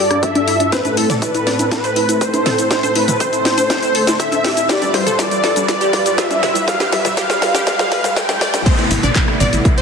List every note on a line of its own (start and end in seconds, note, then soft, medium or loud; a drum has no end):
0.00 0.69 G2 medium
0.00 0.69 G3 medium
0.00 0.68 F4 medium
0.00 4.65 A4 medium
0.00 0.25 D5 loud
0.11 0.20 D4 medium
0.11 cross-stick medium
0.11 closed hi-hat soft
0.23 0.32 D4 medium
0.23 0.72 E5 loud
0.23 kick loud
0.23 closed hi-hat medium
0.35 0.44 D4 medium
0.35 closed hi-hat soft
0.35 high conga medium
0.48 0.57 E4 medium
0.48 open hi-hat medium
0.60 0.69 D4 medium
0.60 closed hi-hat soft
0.72 4.65 A2 medium
0.72 4.65 A3 medium
0.72 4.65 C4 medium
0.72 0.96 B4 loud
0.72 0.82 C5 loud
0.72 kick loud
0.72 snare soft
0.72 closed hi-hat medium
0.72 riser medium
0.72 shaker medium
0.85 0.94 E4 medium
0.85 closed hi-hat soft
0.85 high conga medium
0.85 shaker soft
0.97 1.06 E4 medium
0.97 1.24 A4 medium
0.97 open hi-hat loud
1.10 1.19 D5 medium
1.10 snare soft
1.10 closed hi-hat soft
1.10 mid tom medium
1.10 shaker medium
1.22 1.31 E4 medium
1.22 1.71 B4 loud
1.22 kick loud
1.22 closed hi-hat medium
1.22 shaker medium
1.34 1.43 E4 medium
1.34 closed hi-hat soft
1.34 shaker soft
1.47 1.56 D5 medium
1.47 snare soft
1.47 open hi-hat medium
1.59 1.68 E4 medium
1.59 closed hi-hat soft
1.59 high conga medium
1.59 shaker medium
1.71 1.81 E4 medium
1.71 2.23 B4 loud
1.71 kick loud
1.71 snare medium
1.71 closed hi-hat medium
1.71 shaker medium
1.84 1.93 C5 medium
1.84 closed hi-hat soft
1.84 shaker soft
1.96 2.06 E4 medium
1.96 open hi-hat loud
2.09 2.18 E4 medium
2.09 closed hi-hat soft
2.09 shaker medium
2.21 2.30 B4 medium
2.21 2.70 C5 loud
2.21 kick loud
2.21 closed hi-hat medium
2.21 shaker medium
2.34 2.43 E4 medium
2.34 closed hi-hat soft
2.34 high conga medium
2.34 shaker soft
2.46 2.55 A4 medium
2.46 snare medium
2.46 mid tom medium
2.46 open hi-hat medium
2.58 2.67 E4 medium
2.58 closed hi-hat soft
2.58 shaker medium
2.71 2.80 E4 medium
2.71 2.97 C5 loud
2.71 kick loud
2.71 snare medium
2.71 closed hi-hat medium
2.71 shaker medium
2.83 2.92 C5 loud
2.83 closed hi-hat soft
2.83 high conga medium
2.83 shaker soft
2.95 3.05 E4 medium
2.95 3.22 B4 medium
2.95 open hi-hat loud
3.08 3.17 E4 medium
3.08 closed hi-hat medium
3.08 mid tom medium
3.08 shaker medium
3.20 3.29 C5 loud
3.20 3.70 C5 loud
3.20 kick loud
3.20 closed hi-hat medium
3.20 shaker medium
3.33 3.42 E4 medium
3.33 closed hi-hat soft
3.33 shaker soft
3.45 3.54 E4 medium
3.45 snare medium
3.45 open hi-hat medium
3.58 3.67 C5 medium
3.58 closed hi-hat medium
3.58 high conga medium
3.58 shaker medium
3.70 3.79 E4 medium
3.70 4.16 C5 loud
3.70 kick loud
3.70 snare medium
3.70 closed hi-hat medium
3.70 shaker medium
3.83 3.91 E4 medium
3.83 closed hi-hat soft
3.83 shaker soft
3.95 4.04 A4 medium
3.95 open hi-hat loud
4.07 4.16 E4 medium
4.07 snare medium
4.07 closed hi-hat medium
4.07 shaker medium
4.20 4.29 E4 medium
4.20 4.71 E5 loud
4.20 kick loud
4.20 closed hi-hat medium
4.20 shaker medium
4.32 4.41 E4 medium
4.32 closed hi-hat soft
4.32 high conga medium
4.32 shaker soft
4.44 4.54 G4 medium
4.44 snare medium
4.44 open hi-hat medium
4.57 4.66 E4 medium
4.57 closed hi-hat medium
4.57 shaker medium
4.69 8.62 G2 medium
4.69 8.62 G3 medium
4.69 8.62 F4 medium
4.69 4.78 G4 loud
4.69 8.62 B4 medium
4.69 4.96 D5 loud
4.69 kick loud
4.69 snare medium
4.69 closed hi-hat medium
4.69 shaker medium
4.82 4.91 G3 medium
4.82 closed hi-hat soft
4.82 high conga medium
4.82 shaker soft
4.94 5.03 G3 medium
4.94 5.20 C5 loud
4.94 snare medium
4.94 open hi-hat loud
5.07 5.15 A4 medium
5.07 closed hi-hat medium
5.07 mid tom medium
5.07 shaker medium
5.19 5.28 G3 medium
5.19 5.68 D5 loud
5.19 kick loud
5.19 snare medium
5.19 closed hi-hat medium
5.19 shaker medium
5.31 5.40 G3 medium
5.31 closed hi-hat soft
5.31 shaker soft
5.44 5.53 A4 medium
5.44 snare medium
5.44 open hi-hat medium
5.56 5.65 G3 medium
5.56 closed hi-hat medium
5.56 high conga medium
5.56 shaker medium
5.68 5.77 G3 medium
5.68 6.20 D5 loud
5.68 kick loud
5.68 snare medium
5.68 closed hi-hat medium
5.68 shaker medium
5.81 5.90 G4 loud
5.81 closed hi-hat soft
5.81 shaker soft
5.93 6.02 G3 medium
5.93 snare medium
5.93 open hi-hat loud
6.06 6.15 G3 medium
6.06 closed hi-hat medium
6.06 shaker medium
6.18 6.27 F4 medium
6.18 6.69 E5 loud
6.18 kick loud
6.18 snare medium
6.18 closed hi-hat medium
6.18 shaker medium
6.31 6.39 G3 medium
6.31 closed hi-hat soft
6.31 high conga medium
6.31 shaker soft
6.43 6.52 E4 loud
6.43 snare medium
6.43 mid tom medium
6.43 open hi-hat medium
6.55 6.64 G3 medium
6.55 closed hi-hat medium
6.55 shaker medium
6.68 6.77 G3 medium
6.68 6.94 F5 loud
6.68 kick loud
6.68 snare medium
6.68 closed hi-hat medium
6.68 shaker medium
6.80 6.89 G4 medium
6.80 snare medium
6.80 closed hi-hat soft
6.80 high conga medium
6.80 shaker soft
6.92 7.01 G3 medium
6.92 7.19 E5 loud
6.92 snare loud
6.92 open hi-hat loud
7.05 7.14 G3 medium
7.05 snare medium
7.05 closed hi-hat medium
7.05 mid tom medium
7.05 shaker medium
7.17 7.26 G4 loud
7.17 7.66 F5 loud
7.17 kick loud
7.17 snare loud
7.17 closed hi-hat medium
7.17 shaker medium
7.30 7.39 G3 medium
7.30 snare medium
7.30 closed hi-hat soft
7.30 shaker soft
7.42 7.51 G3 medium
7.42 snare loud
7.42 open hi-hat medium
7.54 7.63 G4 loud
7.54 snare medium
7.54 closed hi-hat medium
7.54 high conga medium
7.54 shaker medium
7.67 7.76 G3 medium
7.67 8.18 F5 loud
7.67 kick loud
7.67 snare loud
7.67 closed hi-hat medium
7.67 shaker medium
7.79 7.88 G3 medium
7.79 snare medium
7.79 closed hi-hat soft
7.79 shaker soft
7.92 8.01 B4 loud
7.92 snare loud
7.92 open hi-hat loud
8.04 8.13 G3 medium
8.04 snare medium
8.04 closed hi-hat medium
8.04 shaker medium
8.16 8.25 G3 medium
8.16 8.66 G5 loud
8.16 kick loud
8.16 snare loud
8.16 closed hi-hat medium
8.16 shaker medium
8.29 8.38 G3 medium
8.29 snare medium
8.29 closed hi-hat soft
8.29 high conga medium
8.29 shaker soft
8.41 8.50 D5 medium
8.41 snare loud
8.41 open hi-hat medium
8.54 8.63 G3 medium
8.54 snare loud
8.54 closed hi-hat medium
8.54 high conga medium
8.54 shaker medium
8.66 9.82 C3 medium
8.66 9.82 A3 medium
8.66 9.82 B3 medium
8.66 8.75 C5 loud
8.66 kick loud
8.66 closed hi-hat medium
8.66 ride medium
8.66 crash loud
8.66 downlifter medium
8.66 shaker soft
8.78 8.87 E4 medium
8.78 closed hi-hat soft
8.91 8.98 A1 loud
8.91 9.00 E4 medium
8.91 open hi-hat loud
8.91 ride medium
8.91 shaker medium
9.03 9.11 A1 medium
9.03 9.12 D5 loud
9.03 closed hi-hat medium
9.03 mid tom medium
9.03 high conga loud
9.03 shaker soft
9.15 9.25 E4 medium
9.15 kick loud
9.15 clap loud
9.15 closed hi-hat medium
9.15 ride medium
9.15 shaker soft
9.28 9.37 E4 medium
9.28 cross-stick medium
9.40 9.48 A1 loud
9.40 9.49 D5 medium
9.40 mid tom medium
9.40 open hi-hat medium
9.40 ride medium
9.40 shaker medium
9.53 9.60 A1 medium
9.53 9.62 E4 medium
9.53 closed hi-hat medium
9.53 shaker soft
9.65 9.74 E4 medium
9.65 kick loud
9.65 closed hi-hat medium
9.65 ride medium
9.65 shaker soft
9.78 9.82 C5 loud
9.78 closed hi-hat soft